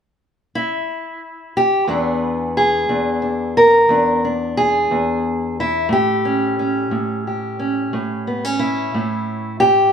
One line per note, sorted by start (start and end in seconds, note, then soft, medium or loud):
0.55 1.58 E4 medium
1.57 1.90 G4 medium
1.87 2.88 E2 medium
1.87 5.87 E3 soft
1.87 5.87 B3 medium
1.87 2.88 D4 soft
1.87 2.56 G#4 soft
2.57 3.57 G#4 medium
2.89 3.88 E2 medium
2.89 3.21 D4 soft
3.22 3.89 D4 soft
3.57 4.24 A#4 medium
3.89 4.90 E2 medium
3.89 4.23 D4 soft
4.25 5.88 D4 soft
4.57 5.58 G#4 loud
4.91 5.91 E2 medium
5.60 5.92 E4 medium
5.89 6.90 A2 medium
5.89 7.26 G4 medium
6.25 6.58 C#4 soft
6.59 7.58 C#4 soft
6.91 7.92 A2 medium
7.27 8.59 G4 soft
7.59 8.26 C#4 soft
7.93 8.93 A2 medium
8.27 8.45 B3 soft
8.45 9.93 C#4 soft
8.59 9.60 E4 medium
8.94 9.93 A2 medium
9.60 9.93 G4 loud